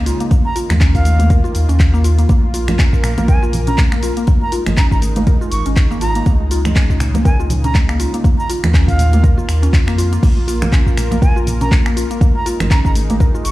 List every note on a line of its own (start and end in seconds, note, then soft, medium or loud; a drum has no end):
0.00 0.14 C#2 loud
0.00 0.29 C#3 medium
0.00 0.27 G#3 medium
0.00 0.27 D#4 medium
0.06 0.20 F4 medium
0.06 open hi-hat medium
0.06 shaker loud
0.20 0.30 A#3 medium
0.20 closed hi-hat medium
0.20 shaker soft
0.31 2.27 D#3 medium
0.31 0.44 A#3 medium
0.31 2.27 A#3 medium
0.31 4.24 F4 medium
0.31 kick loud
0.31 closed hi-hat soft
0.31 high conga medium
0.31 shaker medium
0.45 0.57 A#5 medium
0.56 0.63 F4 medium
0.56 open hi-hat medium
0.56 shaker loud
0.70 1.38 D#2 medium
0.70 finger snap medium
0.70 clap soft
0.70 closed hi-hat medium
0.70 high conga medium
0.70 low conga loud
0.70 shaker soft
0.80 0.93 C#4 medium
0.80 kick loud
0.80 clap loud
0.80 closed hi-hat soft
0.80 shaker medium
0.95 1.30 F5 medium
0.95 kick medium
0.95 open hi-hat soft
0.95 shaker soft
1.05 open hi-hat medium
1.05 high conga medium
1.05 shaker loud
1.19 1.29 A#3 medium
1.19 closed hi-hat medium
1.19 high conga loud
1.19 shaker soft
1.30 1.38 A#4 medium
1.30 kick loud
1.30 closed hi-hat soft
1.30 mid tom medium
1.30 shaker medium
1.44 1.54 F4 medium
1.44 shaker soft
1.55 1.65 D#2 loud
1.55 open hi-hat medium
1.55 shaker medium
1.69 2.25 D#2 medium
1.69 1.79 C#4 medium
1.69 closed hi-hat medium
1.69 shaker soft
1.80 kick loud
1.80 clap loud
1.80 closed hi-hat soft
1.80 shaker medium
1.94 2.04 A#3 loud
1.94 shaker soft
2.04 2.18 F4 medium
2.04 open hi-hat medium
2.04 shaker loud
2.18 2.28 A#3 medium
2.18 closed hi-hat medium
2.18 shaker soft
2.29 4.11 A#1 loud
2.29 4.26 A#3 medium
2.29 2.42 A#3 medium
2.29 6.22 A#4 medium
2.29 kick loud
2.29 closed hi-hat soft
2.29 high conga medium
2.29 shaker medium
2.54 2.62 F4 medium
2.54 open hi-hat medium
2.54 shaker medium
2.68 finger snap medium
2.68 closed hi-hat medium
2.68 high conga medium
2.68 low conga loud
2.68 shaker soft
2.79 2.92 C#4 medium
2.79 kick loud
2.79 clap loud
2.79 closed hi-hat soft
2.79 shaker medium
2.93 kick medium
2.93 shaker soft
3.04 finger snap medium
3.04 mid tom medium
3.04 open hi-hat medium
3.04 high conga medium
3.04 shaker medium
3.18 3.27 A#3 medium
3.18 closed hi-hat medium
3.18 high conga loud
3.18 low conga medium
3.18 shaker soft
3.28 3.36 A#4 medium
3.28 3.43 G#5 medium
3.28 kick loud
3.28 closed hi-hat soft
3.28 shaker medium
3.43 3.52 F4 medium
3.43 shaker soft
3.53 mid tom medium
3.53 open hi-hat medium
3.53 low conga medium
3.53 shaker medium
3.67 3.77 C#4 medium
3.67 3.79 A#5 medium
3.67 closed hi-hat medium
3.67 mid tom medium
3.67 shaker soft
3.78 kick loud
3.78 clap loud
3.78 closed hi-hat soft
3.78 high conga medium
3.78 shaker medium
3.92 4.02 A#3 loud
3.92 finger snap medium
3.92 shaker soft
4.03 4.16 F4 medium
4.03 open hi-hat medium
4.03 shaker loud
4.17 4.26 A#3 medium
4.17 closed hi-hat medium
4.17 shaker soft
4.27 8.20 G#3 medium
4.27 4.40 A#3 medium
4.27 8.20 D#4 medium
4.27 kick loud
4.27 closed hi-hat soft
4.27 high conga medium
4.27 shaker soft
4.42 4.53 A#5 medium
4.52 4.60 F4 medium
4.52 open hi-hat medium
4.52 shaker medium
4.66 5.35 G#1 medium
4.66 finger snap medium
4.66 closed hi-hat medium
4.66 high conga medium
4.66 low conga loud
4.66 shaker soft
4.77 4.90 C#4 medium
4.77 4.86 A#5 medium
4.77 kick loud
4.77 clap loud
4.77 closed hi-hat soft
4.77 shaker medium
4.92 4.98 A#5 medium
4.92 kick medium
4.92 shaker soft
5.02 open hi-hat medium
5.02 high conga medium
5.02 shaker medium
5.16 5.26 A#3 medium
5.16 closed hi-hat medium
5.16 high conga loud
5.16 shaker soft
5.27 5.35 A#4 medium
5.27 kick loud
5.27 closed hi-hat soft
5.27 mid tom medium
5.27 shaker soft
5.41 5.51 F4 medium
5.41 shaker soft
5.52 5.62 G#1 loud
5.52 5.66 C#6 medium
5.52 open hi-hat medium
5.52 shaker medium
5.66 6.21 G#1 loud
5.66 5.76 C#4 medium
5.66 closed hi-hat medium
5.66 shaker soft
5.76 kick loud
5.76 clap loud
5.76 closed hi-hat soft
5.76 shaker soft
5.91 6.01 A#3 loud
5.91 shaker soft
6.01 6.15 F4 medium
6.01 6.32 A#5 medium
6.01 open hi-hat medium
6.01 shaker medium
6.15 6.25 A#3 medium
6.15 closed hi-hat medium
6.15 shaker soft
6.26 8.08 C#2 loud
6.26 8.23 C#3 medium
6.26 6.39 A#3 medium
6.26 kick loud
6.26 closed hi-hat soft
6.26 high conga medium
6.26 shaker medium
6.51 6.59 F4 medium
6.51 open hi-hat medium
6.51 shaker medium
6.65 finger snap medium
6.65 closed hi-hat medium
6.65 high conga loud
6.65 low conga loud
6.65 shaker soft
6.76 6.88 C#4 medium
6.76 kick loud
6.76 clap loud
6.76 closed hi-hat soft
6.76 shaker medium
6.90 kick medium
6.90 shaker soft
7.00 finger snap medium
7.00 mid tom medium
7.00 open hi-hat medium
7.00 high conga medium
7.00 shaker medium
7.14 7.24 A#3 medium
7.14 closed hi-hat medium
7.14 high conga medium
7.14 low conga medium
7.14 shaker soft
7.25 7.33 A#4 medium
7.25 7.40 G#5 medium
7.25 kick loud
7.25 closed hi-hat soft
7.25 shaker soft
7.40 7.49 F4 medium
7.40 shaker soft
7.50 mid tom medium
7.50 open hi-hat medium
7.50 low conga medium
7.50 shaker medium
7.64 7.74 C#4 medium
7.64 7.76 A#5 medium
7.64 closed hi-hat medium
7.64 mid tom medium
7.64 shaker soft
7.75 kick loud
7.75 clap loud
7.75 closed hi-hat soft
7.75 high conga medium
7.75 shaker soft
7.89 7.99 A#3 loud
7.89 finger snap medium
7.89 shaker soft
8.00 8.13 F4 medium
8.00 open hi-hat loud
8.00 shaker medium
8.14 8.23 A#3 medium
8.14 closed hi-hat medium
8.14 shaker soft
8.24 10.21 D#3 medium
8.24 12.17 A#3 medium
8.24 8.37 A#3 medium
8.24 12.17 F4 medium
8.24 kick loud
8.24 closed hi-hat soft
8.24 high conga medium
8.24 shaker medium
8.38 8.50 A#5 medium
8.38 shaker soft
8.49 8.57 F4 medium
8.49 open hi-hat loud
8.49 shaker medium
8.63 9.31 D#2 loud
8.63 finger snap medium
8.63 closed hi-hat medium
8.63 high conga medium
8.63 low conga loud
8.63 shaker soft
8.74 8.87 C#4 medium
8.74 kick loud
8.74 clap loud
8.74 closed hi-hat soft
8.74 shaker medium
8.88 9.24 F5 loud
8.88 kick medium
8.88 open hi-hat medium
8.88 shaker soft
8.99 mid tom medium
8.99 open hi-hat loud
8.99 high conga medium
8.99 shaker medium
9.13 9.23 A#3 medium
9.13 closed hi-hat medium
9.13 high conga medium
9.13 shaker soft
9.23 9.31 A#4 medium
9.23 kick loud
9.23 closed hi-hat soft
9.23 mid tom medium
9.23 shaker soft
9.38 9.47 F4 medium
9.38 shaker soft
9.49 9.67 D#2 medium
9.49 finger snap medium
9.49 open hi-hat medium
9.49 shaker medium
9.63 9.72 C#4 medium
9.63 closed hi-hat medium
9.63 shaker soft
9.73 10.18 F2 loud
9.73 kick loud
9.73 clap loud
9.73 closed hi-hat soft
9.73 shaker soft
9.87 9.97 A#3 loud
9.87 finger snap medium
9.87 shaker soft
9.98 10.12 F4 medium
9.98 open hi-hat medium
9.98 shaker medium
10.12 10.22 A#3 medium
10.12 closed hi-hat medium
10.12 shaker soft
10.23 12.04 A#1 loud
10.23 10.36 A#3 medium
10.23 13.52 A#4 medium
10.23 kick loud
10.23 closed hi-hat soft
10.23 crash medium
10.23 high conga medium
10.23 shaker medium
10.48 10.55 F4 medium
10.48 open hi-hat medium
10.48 shaker medium
10.62 finger snap medium
10.62 closed hi-hat medium
10.62 high conga medium
10.62 low conga loud
10.62 shaker soft
10.72 10.85 C#4 medium
10.72 kick loud
10.72 clap loud
10.72 closed hi-hat soft
10.72 shaker medium
10.87 kick medium
10.87 shaker soft
10.97 finger snap medium
10.97 mid tom medium
10.97 open hi-hat medium
10.97 high conga medium
10.97 shaker medium
11.11 11.21 A#3 medium
11.11 closed hi-hat medium
11.11 high conga loud
11.11 low conga medium
11.11 shaker soft
11.22 11.30 A#4 medium
11.22 11.37 G#5 medium
11.22 kick loud
11.22 closed hi-hat soft
11.22 shaker medium
11.36 11.46 F4 medium
11.36 shaker soft
11.47 mid tom medium
11.47 open hi-hat medium
11.47 low conga medium
11.47 shaker medium
11.61 11.71 C#4 medium
11.61 11.72 A#5 loud
11.61 closed hi-hat medium
11.61 mid tom medium
11.61 shaker soft
11.72 kick loud
11.72 clap loud
11.72 closed hi-hat soft
11.72 high conga loud
11.72 shaker medium
11.86 11.96 A#3 loud
11.86 finger snap medium
11.86 shaker soft
11.97 12.10 F4 medium
11.97 open hi-hat medium
11.97 shaker loud
12.10 12.20 A#3 medium
12.10 closed hi-hat medium
12.10 shaker soft
12.21 13.52 G#3 medium
12.21 12.34 A#3 medium
12.21 13.52 D#4 medium
12.21 kick loud
12.21 closed hi-hat soft
12.21 high conga medium
12.21 shaker medium
12.36 12.47 A#5 medium
12.46 12.54 F4 medium
12.46 open hi-hat medium
12.46 shaker loud
12.60 13.28 G#1 loud
12.60 finger snap loud
12.60 closed hi-hat medium
12.60 high conga medium
12.60 low conga loud
12.60 shaker soft
12.71 12.84 C#4 medium
12.71 12.80 A#5 medium
12.71 kick loud
12.71 clap loud
12.71 closed hi-hat soft
12.71 shaker medium
12.85 12.92 A#5 medium
12.85 kick medium
12.85 shaker soft
12.95 open hi-hat loud
12.95 high conga medium
12.95 shaker loud
13.10 13.19 A#3 medium
13.10 closed hi-hat medium
13.10 high conga loud
13.10 shaker soft
13.20 13.28 A#4 medium
13.20 kick loud
13.20 closed hi-hat soft
13.20 mid tom medium
13.20 shaker medium
13.35 13.44 F4 medium
13.35 shaker soft
13.45 13.52 G#1 loud
13.45 13.52 C#6 medium
13.45 open hi-hat medium
13.45 shaker medium